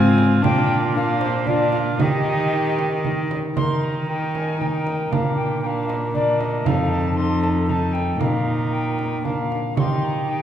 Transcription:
Already playing: G#2 C4 F4 C5 G#5
0.18 frame drum
0.42 A#2 D4 F4 G5, frame drum
0.95 D4 F4 A#4 F5
1.20 C5, frame drum
1.47 D4 F4 A#4 D5, frame drum
1.71 F5, frame drum
1.99 D#3 D#4 G4 D#5, frame drum
2.52 D#4 G4 A#4
2.79 frame drum
3.05 D#4 G4 A#4, frame drum
3.31 frame drum
3.53 D#3 A#3 D#4 A#4 C6, frame drum
3.58 A#4
3.84 A#5
4.09 D#4 A#4 G5
4.35 G#5, frame drum
4.57 A#3 D#4 A#4 G5
4.61 frame drum
4.66 G#5
4.74 G5
4.87 frame drum
5.09 A#2 A#3 D4 A#4 F5, frame drum
5.13 A#4
5.36 G5
5.62 D4 A#4 G5
5.67 F5
5.88 D#5, frame drum
6.14 D4 A#4 D5, frame drum
6.40 D#5, frame drum
6.64 F2 C4 D#4 A4 F5, frame drum
6.91 A5
7.16 D#4 A4 C6
7.42 A5, frame drum
7.68 D#4 A4 A5 A#5, frame drum
7.93 G5, frame drum
8.17 A#2 A#3 D#4 A#4 F5, frame drum
8.72 G5
8.99 frame drum
9.22 A#3 D4 A#4 F5, frame drum
9.52 frame drum
9.74 D#3 A#3 D#4 G4 C#6, frame drum
9.80 C6
10.04 A#5
10.28 D#4 G4 G5

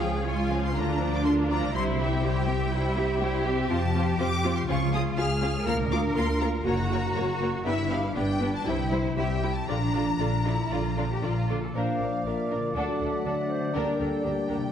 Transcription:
Already playing: C#2 C#3 C#4 G#4 F5
0.01 F3 C#4 F4 G#4 F5 G5
0.14 G#4
0.26 G#3 F4 C#5 G#5 C#6
0.39 F5
0.50 F3 C#4 G#4 F5
0.63 C#5 C6
0.75 D2 D3 D4 F4 A#4 A#5
0.88 D4
0.99 F3 D4 F4 D5
1.12 A#4 D6
1.24 D3 D4 F4 A#4 A#5 C6
1.38 F5
1.49 F3 D4 F4 D5 A#5
1.62 A#4
1.73 C2 C3 G3 E4 C5 C6
1.86 C4
1.97 C4 E4 G4 G5
2.01 E5
2.11 G4
2.22 G3 E4 G4 C5 C6
2.36 E5
2.47 C4 G4 E5
2.61 C5
2.71 C3 G3 E4 C5
2.86 C4
2.96 C4 E4 G4 E5
3.11 G4
3.21 G3 E4 G4 C5 C6
3.34 E5
3.46 C4 G4 E5
3.60 C5
3.69 F2 C4 F4 C5 A5
3.84 C3
3.95 C4 F4 C5
4.08 C5
4.18 F2 C4 F4 C5 C6 D6
4.32 F5
4.44 C4 F4 C5
4.56 C5 C6
4.68 C#2 C#3 C#4 F4 G#4 F5 C#6
4.80 C#4
4.92 C#4 F4 G#4 F5 D#6
5.05 G#4
5.17 C#2 C#4 F4 G#4 F5 C#6 F6
5.30 F5
5.42 C#4 F4 G#4 F5
5.55 C#5
5.65 D2 D3 A#3 F4 A#4 F5 F6
5.79 D4
5.91 A#3 F4 A#4 F5 D6
6.04 A#4
6.15 D2 A#3 F4 A#4 F5 A#5 C6
6.29 F5
6.40 A#3 F4 A#4 F5 A#5
6.55 F4
6.64 F#1 F#2 A#3 F#4 A#4 C#5 A#5
6.81 C#3
6.90 A#3 F#4 A#4 C#5
7.05 A#4
7.16 F#1 A#3 F#4 A#4 C#5 A#5
7.30 F#5
7.41 A#3 F#4 A#4 C#5
7.55 F#4
7.65 G1 G2 B3 D4 E4 G4 B4 E5
7.79 D3
7.89 B3 D4 G4 B4 F5
8.03 B4
8.15 G1 B3 D4 G4 B4 G5 D6
8.29 D5
8.39 B3 D4 G4 B4
8.54 D5 A5
8.65 C2 C3 G3 E4 C5 G5
8.79 G3
8.90 G3 E4 C5
9.06 C5
9.16 C2 G3 E4 G4 C5 E5 C6
9.30 E5
9.36 G5
9.43 G3 E4 C5
9.54 E4 A5
9.68 A#1 A#2 D3 D4 F4 D5 A#5
9.83 F3
9.94 D3 D4 F4 D5
10.09 D5
10.19 A#1 D3 D4 F4 D5 F6
10.35 F5
10.44 D3 D4 E4 F4 D5
10.60 F5
10.71 A#1 A#2 D3 D4 F4 D5
10.87 F3
10.97 D3 D4 F4 D5
11.11 G4 D5
11.23 A#1 D3 D4 F4 D5 F6
11.37 F5
11.50 D3 D4 F4 D5
11.57 A#2
11.61 D4 A4 F5
11.66 F4
11.70 A#3 F4 F5
11.75 A#1 A#2 F3 D4 A#4 C5 D5 F5
12.00 A#1 A#2 D4 A#4
12.25 A#1 A#2 D4 A#4 E5
12.50 A#1 A#2 D4 A#4 D5
12.58 D3
12.62 D4
12.67 F#4
12.71 D2 A3 D4 A4 D5
12.76 D3 F#3 D4 A4 F#5
13.00 D2 D3 D4 A4 E5
13.25 D2 D3 D4 A4 D5
13.50 C5
13.58 D3
13.63 D4
13.67 G4
13.72 D2 D3 G3 A#3 D4 A#4 D5 G5
13.99 D2 D3 D4 A4 A#4
14.23 D2 D3 D4 G4 A#4 D5
14.49 D2 D3 D4 A#4
14.57 C3
14.61 E4
14.65 G4

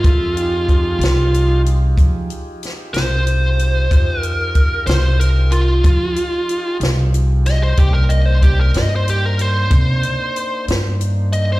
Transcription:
Already playing: F4
0.04 F2 F4 G#4 A4 E5, kick, closed hi-hat
0.36 D#4 F4 G4 G#4, closed hi-hat
0.69 kick, closed hi-hat
0.99 C2, closed hi-hat
1.04 snare
1.34 closed hi-hat
1.66 closed hi-hat
1.98 F3, kick, closed hi-hat
2.30 closed hi-hat
2.63 snare, closed hi-hat
2.94 C2 C5, snare, closed hi-hat
3.27 closed hi-hat
3.59 closed hi-hat
3.91 F2 D#4 F4 G4 G#4, kick, closed hi-hat
4.20 A#4, closed hi-hat
4.55 kick, closed hi-hat
4.86 C2 C5, snare, closed hi-hat
5.20 A#4, closed hi-hat
5.51 F4, closed hi-hat
5.84 F3, kick, closed hi-hat
6.16 closed hi-hat
6.49 closed hi-hat
6.80 C2, snare, closed hi-hat
7.14 closed hi-hat
7.46 D#5, snare, closed hi-hat
7.63 C5
7.77 C2 A#3 D4 D#4 G4 C5, kick, closed hi-hat
7.94 A#4
8.09 D#5, closed hi-hat
8.25 C5
8.42 G4, kick, closed hi-hat
8.61 A#4
8.74 G2 D#5, snare, closed hi-hat
8.96 C5
9.08 G4, closed hi-hat
9.26 A#4
9.39 C5, closed hi-hat
9.70 C3, kick, closed hi-hat
10.03 closed hi-hat
10.36 closed hi-hat
10.68 G2, snare, closed hi-hat
11.01 closed hi-hat
11.33 D#5, closed hi-hat
11.52 C5

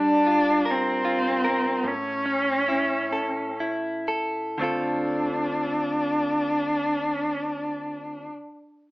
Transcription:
Already playing: G3 D4
0.27 F4
0.66 A#4
0.70 C4
1.05 F4
1.45 A#4
1.84 A2 C#4
2.26 C#4
2.68 E4
3.13 A4
3.60 E4
4.08 A4
4.58 D3 A3 C4
4.62 D4 F4 A4

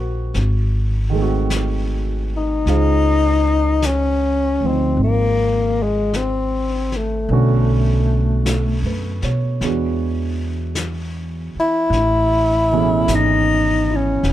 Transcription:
Already playing: A#1 D#3 F#3 A#3 C#4 F4 A#4 C5
0.00 F#4
0.34 G#1, brush sweep, snare
1.10 D#3 G#3
1.15 A3 C4
1.22 F#4
1.50 brush sweep, snare, hi-hat pedal
2.37 D#4
2.66 C#2 C#3 F4 G#4 C5, brush sweep, snare
3.82 C#4, brush sweep, snare, hi-hat pedal
4.61 D2 F3 C4
4.66 C4 D#4
4.97 G#1, brush sweep
5.03 A#3
5.83 G#3
6.13 C4, brush sweep, snare, hi-hat pedal
6.92 snare
6.96 A3
7.29 B1 D3 A3 B3 C#4, brush sweep
7.33 F#4
8.46 A4, brush sweep, snare, hi-hat pedal
8.83 F#2 B4
9.22 B2 C#5, snare
9.61 E2 E3 G#3 B3 D4 F#4, brush sweep, snare
10.75 brush sweep, snare, hi-hat pedal
11.55 muted upright bass stroke
11.59 E4
11.90 A1, brush sweep, snare
12.72 B2 E3 C#4 G#4 A4
13.07 G#1, brush sweep, snare, hi-hat pedal
13.15 D#4
13.90 E4
13.96 C#4
14.23 E1, brush sweep, snare

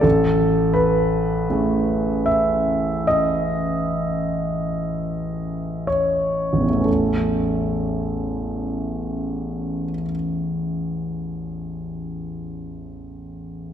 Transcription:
0.01 A1 A4
0.74 B4
1.50 E3 A3 C#4 G#4
2.26 E5
3.07 D#5
5.87 C#5
6.53 A1
6.58 E2
6.64 E3
6.70 A3
6.75 B3
6.81 C#4
6.85 A4

